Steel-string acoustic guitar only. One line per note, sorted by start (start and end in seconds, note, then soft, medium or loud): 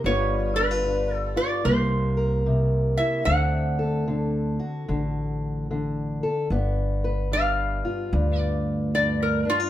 0.04 0.83 G2 medium
0.04 1.62 G3 medium
0.04 1.63 B3 medium
0.04 0.55 F4 medium
0.04 1.63 B4 medium
0.56 0.71 D4 medium
0.71 1.35 F4 soft
0.84 1.65 G2 medium
1.36 1.62 F4 medium
1.64 2.45 C3 medium
1.64 3.26 A#3 medium
2.17 3.23 A#4 medium
2.46 3.26 C3 medium
2.98 3.24 E4 medium
3.26 4.06 D3 medium
3.26 6.47 C4 medium
3.79 6.21 A4 medium
4.08 4.87 D3 medium
4.59 6.47 F#4 medium
4.88 5.69 D3 medium
5.71 6.47 D3 medium
6.23 6.48 A4 medium
6.51 7.31 G2 medium
6.51 9.70 B3 medium
7.04 9.70 B4 medium
7.32 8.12 G2 medium
7.85 9.45 F4 medium
8.13 8.94 G2 medium
8.95 9.70 G2 medium
9.45 9.60 D4 medium
9.60 9.70 F4 soft